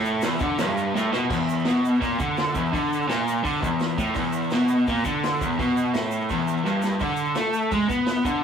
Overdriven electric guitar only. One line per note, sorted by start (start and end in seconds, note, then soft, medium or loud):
0.00 0.22 A2 loud
0.23 0.40 E2 loud
0.40 0.58 D3 medium
0.58 0.94 G2 loud
0.94 1.12 A2 loud
1.12 1.30 B2 loud
1.30 1.65 E2 medium
1.65 2.00 B2 medium
2.01 2.18 A#2 medium
2.19 2.55 D3 medium
2.54 2.72 E2 loud
2.73 3.08 D3 loud
3.08 3.43 A#2 medium
3.44 3.61 D3 loud
3.60 3.97 E2 medium
3.98 4.15 A2 medium
4.15 4.50 E2 loud
4.52 4.87 B2 medium
4.88 5.05 A#2 medium
5.05 5.40 D3 medium
5.41 5.58 E2 medium
5.59 5.94 B2 medium
5.94 6.29 A2 medium
6.30 6.65 E2 loud
6.65 7.00 G2 medium
7.01 7.36 D3 loud
7.36 7.71 A3 medium
7.72 7.89 G#3 loud
7.89 8.24 B3 medium
8.25 8.42 D3 loud